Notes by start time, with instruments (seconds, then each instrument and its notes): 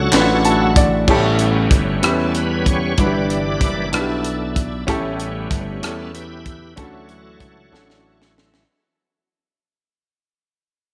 Already playing: slap bass C#2, grand piano F#3 C#4 D4 F#4 A4, tonewheel organ F#4 A4 C#5
0.12 slap bass A1, grand piano C#4 D4 F4 B4, snare, clap, closed hi-hat
0.20 grand piano F#4
0.45 tonewheel organ F#3 A3 E4, grand piano A5, closed hi-hat
0.61 grand piano F#5
0.76 grand piano D5, kick, closed hi-hat
1.07 slap bass A1, grand piano A2 C#4 E4 G4 A4, tonewheel organ G3 B3 C#4, kick, crash
1.39 closed hi-hat
1.71 slap bass G1, kick, closed hi-hat
2.02 slap bass E2, grand piano C#4 E4 G4 B4, tonewheel organ A4, cross-stick, closed hi-hat
2.35 tonewheel organ B4, closed hi-hat
2.66 tonewheel organ C#5, kick, closed hi-hat
2.98 slap bass G1, tonewheel organ E3 G3 D4 B4 D5, grand piano G3 D4 E4 F#4 B4, kick, closed hi-hat
3.06 grand piano G4
3.30 closed hi-hat
3.61 slap bass F#1, kick, closed hi-hat
3.92 slap bass B1, grand piano D4 E4 F#4 B4, tonewheel organ D4 E4 A4, cross-stick, closed hi-hat
4.00 grand piano G4
4.24 closed hi-hat
4.56 kick, closed hi-hat
4.87 slap bass A1, grand piano A2 C#4 E4 G4 A4, tonewheel organ G3 B3 C#4, kick, closed hi-hat
5.20 closed hi-hat
5.51 slap bass G1, kick, closed hi-hat
5.80 slap bass E2, tonewheel organ G3 B3 C#4 A4, grand piano C#4 E4 G4 A4, cross-stick, closed hi-hat
6.15 tonewheel organ E4 G4 B4, closed hi-hat
6.46 kick, closed hi-hat
6.76 slap bass D2, tonewheel organ E3 F#3 A3 F#4 A4 C#5, grand piano F#3 C#4 D4 E4 A4, kick, closed hi-hat
6.84 grand piano F#4
7.09 closed hi-hat
7.40 slap bass C#2, kick, closed hi-hat
7.72 slap bass A1, grand piano C#4 D4 F#4 A4, snare
7.90 snare
8.22 snare
8.38 snare
8.54 snare